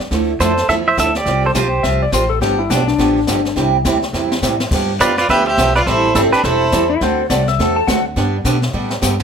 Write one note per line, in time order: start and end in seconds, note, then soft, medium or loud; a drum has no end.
0.11 0.39 D2 medium
0.11 0.31 D3 medium
0.11 0.31 F3 medium
0.11 0.31 A3 medium
0.11 0.31 E4 medium
0.11 brush sweep soft
0.11 kick soft
0.11 snare soft
0.40 0.68 F2 medium
0.40 0.51 D3 medium
0.40 0.51 F3 medium
0.40 0.51 A3 medium
0.40 0.52 E4 medium
0.40 0.68 A4 medium
0.40 0.67 C5 medium
0.40 kick soft
0.40 snare medium
0.40 hi-hat pedal medium
0.57 snare soft
0.68 0.96 E2 medium
0.68 0.88 D3 medium
0.68 0.88 F3 medium
0.68 0.89 A3 medium
0.68 0.89 E4 medium
0.68 0.75 A4 medium
0.68 0.74 E5 loud
0.68 brush sweep soft
0.68 kick soft
0.68 snare soft
0.88 0.98 C5 medium
0.88 0.98 E5 loud
0.97 1.25 D2 medium
0.97 1.08 D3 medium
0.97 1.09 F3 medium
0.97 1.09 A3 medium
0.97 1.09 E4 medium
0.97 1.15 A4 medium
0.97 1.15 E5 loud
0.97 kick soft
0.97 snare medium
0.97 hi-hat pedal medium
1.15 1.43 G4 medium
1.15 1.45 D5 medium
1.15 snare soft
1.26 1.54 C2 medium
1.26 1.46 F3 medium
1.26 1.46 C4 medium
1.26 1.46 F4 medium
1.26 1.46 G4 medium
1.26 1.47 C5 medium
1.26 brush sweep soft
1.26 kick soft
1.26 snare soft
1.46 1.50 A4 medium
1.46 1.51 C5 medium
1.55 1.83 B1 medium
1.55 1.66 F3 medium
1.55 1.66 C4 medium
1.55 1.66 F4 medium
1.55 1.66 G4 medium
1.55 1.83 G4 medium
1.55 1.66 C5 medium
1.55 1.83 C5 medium
1.55 kick soft
1.55 snare medium
1.55 hi-hat pedal medium
1.83 2.12 C2 medium
1.83 2.03 F3 medium
1.83 2.03 C4 medium
1.83 2.04 F4 medium
1.83 2.04 G4 medium
1.83 2.04 C5 medium
1.83 2.00 E5 loud
1.83 brush sweep medium
1.83 kick soft
1.83 snare soft
2.02 2.13 D5 medium
2.12 2.40 A1 medium
2.12 2.23 F3 medium
2.12 2.24 C4 medium
2.12 2.24 F4 medium
2.12 2.24 G4 medium
2.12 2.24 C5 medium
2.12 2.30 C5 medium
2.12 kick soft
2.12 snare medium
2.12 hi-hat pedal medium
2.29 2.41 A4 medium
2.41 2.69 G1 medium
2.41 2.61 D3 medium
2.41 2.61 F3 medium
2.41 2.61 B3 medium
2.41 2.61 D4 medium
2.41 2.58 G4 medium
2.41 2.61 G4 medium
2.41 brush sweep soft
2.41 kick soft
2.41 snare soft
2.59 2.70 E4 medium
2.70 2.98 B1 loud
2.70 2.81 D3 medium
2.70 2.81 F3 medium
2.70 2.81 B3 medium
2.70 2.87 D4 medium
2.70 2.82 D4 medium
2.70 2.82 G4 medium
2.70 kick soft
2.70 snare medium
2.70 hi-hat pedal medium
2.88 3.71 D4 medium
2.88 snare soft
2.98 3.27 A1 medium
2.98 3.18 D3 medium
2.98 3.18 F3 medium
2.98 3.18 B3 medium
2.98 3.19 D4 medium
2.98 3.19 G4 medium
2.98 brush sweep medium
2.98 kick soft
2.98 snare soft
3.27 3.55 G1 medium
3.27 3.39 D3 medium
3.27 3.39 F3 medium
3.27 3.39 B3 medium
3.27 3.39 D4 medium
3.27 3.39 G4 medium
3.27 kick soft
3.27 snare medium
3.27 hi-hat pedal medium
3.45 snare soft
3.56 3.84 C2 medium
3.56 3.76 C3 medium
3.56 3.76 G3 medium
3.56 3.76 C4 medium
3.56 3.76 E4 medium
3.56 3.76 G4 medium
3.56 brush sweep soft
3.56 kick soft
3.56 snare soft
3.85 4.13 D2 medium
3.85 3.96 C3 medium
3.85 3.96 G3 medium
3.85 3.97 C4 medium
3.85 3.96 E4 medium
3.85 3.97 G4 medium
3.85 kick soft
3.85 snare medium
3.85 hi-hat pedal medium
4.02 snare soft
4.13 4.41 E2 medium
4.13 4.33 C3 soft
4.13 4.33 G3 medium
4.13 4.34 C4 medium
4.13 4.34 E4 medium
4.13 4.34 G4 medium
4.13 snare medium
4.32 snare medium
4.42 4.70 A2 medium
4.42 4.53 C3 medium
4.42 4.54 G3 medium
4.42 4.54 C4 medium
4.42 4.54 E4 medium
4.42 4.54 G4 medium
4.42 snare medium
4.42 hi-hat pedal medium
4.60 snare medium
4.71 4.99 G2 medium
4.71 4.91 D3 medium
4.71 4.92 F3 medium
4.71 4.92 B3 medium
4.71 4.92 D4 medium
4.71 4.92 G4 medium
4.71 brush sweep soft
4.71 kick medium
4.71 snare soft
4.71 crash medium
5.00 5.28 F2 medium
5.00 5.11 D3 medium
5.00 5.11 F3 medium
5.00 5.11 B3 medium
5.00 5.11 D4 medium
5.00 5.16 F4 medium
5.00 5.12 G4 medium
5.00 5.17 B4 medium
5.00 5.17 D5 medium
5.00 kick soft
5.00 snare medium
5.00 hi-hat pedal medium
5.17 5.29 F4 medium
5.17 5.29 B4 medium
5.17 5.29 D5 medium
5.17 snare soft
5.29 5.57 D2 medium
5.29 5.48 D3 medium
5.29 5.49 F3 medium
5.29 5.49 B3 medium
5.29 5.49 D4 medium
5.29 5.45 G4 medium
5.29 5.49 G4 medium
5.29 5.46 B4 medium
5.29 5.46 E5 loud
5.29 brush sweep medium
5.29 kick soft
5.29 snare soft
5.47 5.73 G4 medium
5.47 5.73 C5 medium
5.47 5.73 E5 loud
5.58 5.85 B1 medium
5.58 5.69 D3 medium
5.58 5.69 F3 medium
5.58 5.69 B3 medium
5.58 5.69 D4 medium
5.58 5.69 G4 medium
5.58 kick soft
5.58 snare medium
5.58 hi-hat pedal medium
5.75 5.89 F4 medium
5.75 5.81 B4 medium
5.75 5.81 D5 loud
5.75 snare soft
5.86 6.14 A1 medium
5.86 6.06 E3 medium
5.86 6.07 G3 medium
5.86 6.07 C4 medium
5.86 6.16 E4 medium
5.86 6.07 E4 medium
5.86 6.13 A4 medium
5.86 6.07 A4 medium
5.86 6.16 C5 medium
5.86 brush sweep medium
5.86 kick soft
5.86 snare soft
6.15 6.31 G1 medium
6.15 6.26 E3 medium
6.15 6.26 G3 medium
6.15 6.26 C4 medium
6.15 6.36 C4 medium
6.15 6.20 E4 medium
6.15 6.27 E4 medium
6.15 6.20 A4 medium
6.15 6.27 A4 medium
6.15 kick soft
6.15 snare medium
6.15 hi-hat pedal medium
6.32 6.46 D4 medium
6.32 6.43 G4 medium
6.32 6.44 B4 medium
6.32 muted upright bass stroke soft
6.32 snare soft
6.43 6.72 E1 medium
6.43 6.63 E3 medium
6.43 6.64 G3 medium
6.43 6.64 C4 medium
6.43 6.90 E4 medium
6.43 6.64 E4 medium
6.43 6.87 A4 medium
6.43 6.64 A4 medium
6.43 6.90 C5 medium
6.43 brush sweep medium
6.43 kick soft
6.43 snare soft
6.72 7.00 E2 medium
6.72 6.83 E3 medium
6.72 6.83 G3 medium
6.72 6.84 C4 medium
6.72 6.84 E4 medium
6.72 6.84 A4 medium
6.72 kick soft
6.72 snare medium
6.72 hi-hat pedal medium
6.90 7.01 E4 loud
7.01 7.29 D2 medium
7.01 7.21 D3 medium
7.01 7.21 A3 medium
7.01 7.21 C4 medium
7.01 7.21 F#4 medium
7.01 7.21 A4 medium
7.01 7.29 C5 medium
7.01 brush sweep soft
7.01 kick soft
7.01 snare soft
7.30 7.58 C2 loud
7.30 7.41 D3 medium
7.30 7.41 A3 medium
7.30 7.41 C4 medium
7.30 7.42 F#4 medium
7.30 7.42 A4 medium
7.30 7.47 D5 medium
7.30 kick soft
7.30 snare medium
7.30 hi-hat pedal medium
7.47 7.76 E5 medium
7.47 snare soft
7.59 7.87 E2 medium
7.59 7.78 D3 medium
7.59 7.79 A3 medium
7.59 7.79 C4 medium
7.59 7.79 F#4 medium
7.59 7.79 A4 medium
7.59 brush sweep soft
7.59 kick soft
7.59 snare soft
7.76 7.87 A5 medium
7.87 8.15 D2 medium
7.87 7.99 D3 medium
7.87 7.99 A3 medium
7.87 7.99 C4 medium
7.87 7.99 F#4 medium
7.87 8.00 A4 medium
7.87 8.04 F#5 loud
7.87 kick soft
7.87 snare medium
7.87 hi-hat pedal medium
8.16 8.44 G2 medium
8.16 8.36 D3 medium
8.16 8.36 G3 medium
8.16 8.36 B3 medium
8.16 8.36 D4 medium
8.16 8.36 G4 medium
8.16 brush sweep soft
8.16 kick soft
8.16 snare soft
8.45 8.73 B2 medium
8.45 8.56 D3 medium
8.45 8.56 G3 medium
8.45 8.56 B3 medium
8.45 8.56 D4 medium
8.45 8.56 G4 medium
8.45 kick soft
8.45 snare medium
8.45 hi-hat pedal medium
8.62 snare soft
8.73 9.02 A2 medium
8.73 8.93 D3 medium
8.73 8.93 G3 medium
8.73 8.93 B3 medium
8.73 8.94 D4 medium
8.73 8.94 G4 medium
8.90 snare medium
9.02 9.23 G2 medium
9.02 9.13 D3 medium
9.02 9.13 G3 medium
9.02 9.13 B3 medium
9.02 9.13 D4 medium
9.02 9.14 G4 medium
9.02 snare medium
9.02 hi-hat pedal medium
9.20 floor tom medium